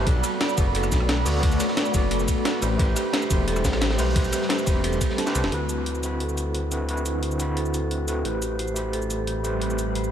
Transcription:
Already playing: B5
0.05 B1 A3 B3 D4 F#4 A4, kick, closed hi-hat, ride
0.09 D5
0.24 F#4, cross-stick, closed hi-hat, ride, cabasa
0.41 D5, snare, closed hi-hat, ride
0.49 cabasa
0.56 F#1 B3 F#4 A4, kick, closed hi-hat, ride, cabasa
0.60 D5
0.75 A4, closed hi-hat, ride
0.84 cross-stick, ride, cabasa
0.92 B1, kick, snare, closed hi-hat, ride, cabasa
1.00 cross-stick
1.09 F#4, snare, closed hi-hat, ride
1.25 D2 B3 F#4 A4 D5, closed hi-hat, open hi-hat, ride, cabasa
1.41 B3 F#4 A4, kick, closed hi-hat, ride
1.45 D5
1.52 ride, cabasa
1.60 F#4, cross-stick, snare, closed hi-hat, ride, cabasa
1.68 snare
1.77 D5, snare, closed hi-hat, ride
1.86 cabasa
1.92 F#1 B3 F#4 A4, kick, snare, closed hi-hat, ride, cabasa
1.96 D5
2.11 A4, closed hi-hat, ride
2.20 cabasa
2.28 kick, closed hi-hat, ride, cabasa
2.45 F#4, snare, closed hi-hat, ride
2.54 ride
2.61 A1 G3 A3 C4 G4 B4 C5, cross-stick, closed hi-hat, ride, cabasa
2.77 A1 A3 G4 B4, kick, closed hi-hat, ride
2.81 C5
2.96 G4, cross-stick, closed hi-hat, ride, cabasa
3.13 C5, snare, closed hi-hat, ride
3.22 cabasa
3.28 E1 A3 G4 B5, kick, closed hi-hat, ride, cabasa
3.33 C5
3.48 A4, closed hi-hat, ride
3.56 cross-stick, ride, cabasa
3.64 A1, kick, snare, closed hi-hat, ride, cabasa
3.73 cross-stick, snare, ride
3.81 G4, snare, closed hi-hat, ride
3.90 snare, ride
3.98 B1 A3 G4 B4 C5, closed hi-hat, open hi-hat, ride, cabasa
4.14 A3 G4 B4, kick, closed hi-hat, ride
4.18 C5
4.25 ride, cabasa
4.32 G4, cross-stick, snare, closed hi-hat, ride, cabasa
4.42 snare
4.49 C5, snare, closed hi-hat, ride
4.59 cabasa
4.65 E1 A3 G4 B5, kick, snare, closed hi-hat, ride, cabasa
4.69 C5
4.84 A4, closed hi-hat, ride
4.93 cabasa
5.01 G4, kick, closed hi-hat, ride, cabasa
5.10 snare
5.18 A5, snare, closed hi-hat, ride
5.26 A3 G4 B4 C5, snare, cabasa
5.35 C2, closed hi-hat, ride, cabasa
5.44 E1, snare
5.50 D2 D3 C4 E4 F#4, closed hi-hat
5.54 B4
5.69 F#4, closed hi-hat, cabasa
5.86 C5, closed hi-hat
5.95 cabasa
6.02 D3 C4 E4 F#4, closed hi-hat, cabasa
6.06 B5
6.20 A4, closed hi-hat
6.29 cabasa
6.38 closed hi-hat, cabasa
6.54 F#4, closed hi-hat
6.71 D3 C4 E4 F#4 B4, closed hi-hat, cabasa
6.87 D3 C4 E4 F#4, closed hi-hat
6.91 B4
6.97 cabasa
7.06 F#4, closed hi-hat, cabasa
7.23 C5, closed hi-hat
7.31 cabasa
7.38 D3 C4 E4 F#4, closed hi-hat, cabasa
7.42 B5
7.57 A4, closed hi-hat
7.66 cabasa
7.74 closed hi-hat, cabasa
7.91 F#4, closed hi-hat
8.07 D3 C4 E4 F#4 B4, closed hi-hat, cabasa
8.23 A1 G3 A3 C4 G4 B4 B5, closed hi-hat
8.27 C5
8.42 G4, closed hi-hat, cabasa
8.59 C5, closed hi-hat
8.68 cabasa
8.74 A3 G4 B5, closed hi-hat, cabasa
8.78 C5
8.93 A4, closed hi-hat
9.02 cabasa
9.10 closed hi-hat, cabasa
9.27 G4, closed hi-hat
9.43 A3 G4 B4 C5, closed hi-hat, cabasa
9.59 A3 G4 B4, closed hi-hat
9.63 C5
9.70 cabasa
9.78 G4, closed hi-hat, cabasa
9.95 C5, closed hi-hat
10.04 cabasa

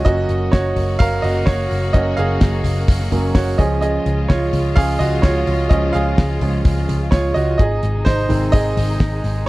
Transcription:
Already playing: C#3
0.05 F#1 F#3 A#3 C#4 F#4 D#5, kick, hi-hat pedal, open hi-hat
0.29 F#1, hi-hat pedal, open hi-hat
0.52 F#1 F#4 C#5, kick, snare, hi-hat pedal, open hi-hat
0.76 F#1, floor tom, hi-hat pedal, open hi-hat
0.99 F#1 A#4 F5, kick, hi-hat pedal, open hi-hat
1.22 F#1 F#4 D#5, hi-hat pedal, open hi-hat
1.46 F#1 F#4 C#5, kick, snare, hi-hat pedal, open hi-hat
1.70 F#1, hi-hat pedal, open hi-hat
1.93 F#1 F#3 A#3 C#4 F#4 D#5, kick, hi-hat pedal, open hi-hat
2.17 F#1 G#4 F5, hi-hat pedal, open hi-hat
2.41 F#1, kick, snare, hi-hat pedal, open hi-hat
2.64 F#1, floor tom, hi-hat pedal, open hi-hat
2.88 F#1, kick, hi-hat pedal, open hi-hat
3.00 snare
3.11 F#1 F#3 A#3 C#4, floor tom, hi-hat pedal, open hi-hat
3.35 F#1 F#4 C#5, kick, snare, hi-hat pedal, open hi-hat
3.58 C#2 F3 G#3 C#4 F4 G#4 D#5, kick, hi-hat pedal, open hi-hat
3.81 G#4 D#5, hi-hat pedal, open hi-hat
4.06 C#2, hi-hat pedal, open hi-hat
4.28 C#2 F4 C#5, kick, snare, hi-hat pedal, open hi-hat
4.53 C#2, floor tom, hi-hat pedal, open hi-hat
4.76 C#2 F3 G#3 C#4 G#4 F5, kick, hi-hat pedal, open hi-hat
4.99 C#2 F#4 D#5, floor tom, hi-hat pedal, open hi-hat
5.22 C#2 F4 C#5, kick, snare, hi-hat pedal, open hi-hat
5.47 C#2, hi-hat pedal, open hi-hat
5.69 C#2 F3 G#3 C#4 G#4 D#5, kick, hi-hat pedal, open hi-hat
5.93 C#2 G#4 F5, hi-hat pedal, open hi-hat
6.18 C#2, kick, snare, hi-hat pedal, open hi-hat
6.41 C#2 F3 G#3 C#4, floor tom, hi-hat pedal, open hi-hat
6.65 C#2, kick, hi-hat pedal, open hi-hat
6.77 snare
6.89 C#2, floor tom, hi-hat pedal, open hi-hat
7.11 C#2 F4 C#5, kick, snare, hi-hat pedal, open hi-hat
7.34 C#2 F#4 D#5, hi-hat pedal, open hi-hat
7.58 G#1 C3 G#3 D#4 G#4 D#5, kick, hi-hat pedal, open hi-hat
7.83 G#1, hi-hat pedal, open hi-hat
8.05 G#1 D#4 C5, kick, snare, hi-hat pedal, open hi-hat
8.29 G#1 D#3 G#3 C4, floor tom, hi-hat pedal, open hi-hat
8.52 G#1 G#4 D#5, kick, hi-hat pedal, open hi-hat
8.77 G#1, floor tom, hi-hat pedal, open hi-hat
9.00 G#1, kick, snare, hi-hat pedal, open hi-hat
9.24 G#1, hi-hat pedal, open hi-hat

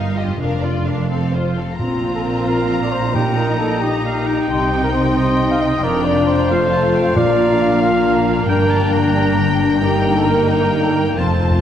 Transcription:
Already playing: G1 G2 D#4 F4 G4 A#4 F5
0.17 F4 G4 D#5
0.23 F2
0.28 D4
0.32 F4
0.37 F1 A#4 F5
0.41 F2 D4
0.62 F4 D5
0.85 D4 F5
0.90 F2 A#4
0.97 C4
1.01 F4
1.06 A4 F5
1.10 C4 A4
1.33 F4 C5
1.56 C4 A4 F5
1.78 A#1 A#2 C4 F4 A#5
2.03 F4
2.15 A4
2.25 F3 A#4
2.47 C4 A#4 F5 A#5
2.70 F3
2.82 D5
2.92 C4 C5
3.14 A#2 A#3 D#4 G4 G5 A#5
3.37 D#4 A#4
3.59 G3 A4
3.80 D#4 G4 D#5 A#5
4.05 G3 F5
4.27 G5
4.49 C2 C3 C4 D#4 G4 G5 C6
4.73 D#4
4.83 A#4
4.93 C4 C5
5.17 D#4 C5 D#5 C6
5.40 C4
5.51 F5
5.61 G3 D#5
5.83 F1 F2 A#3 D4 F4 A#4 D5 A#5
6.05 F3 D5
6.27 F4 C5 D5
6.49 F2 A3 F4 F5 A5
6.72 A3 A5
6.95 F4 G5
7.16 A#1 A#2 A#3 D4 F4 D5 F5 A#5
7.39 D4
7.61 F3
7.81 D4 F4 F5 A#5
8.05 F3
8.27 A#3
8.47 G1 G2 D4 A#4 G5 A#5
8.70 D4 A5
8.93 D3 A#5
9.16 D4
9.38 D3
9.61 A#3
9.81 G2 A#3 D#4 G4 A#5
10.05 D#4
10.17 A4
10.27 G3 A#4
10.49 D#4 A#4 G5 A#5
10.72 G3
10.84 A4
10.95 A#3 A#4
11.17 F1 F2 A3 C4 F4 C5 A5
11.26 F2
11.34 F2
11.42 F2 F4
11.50 F2

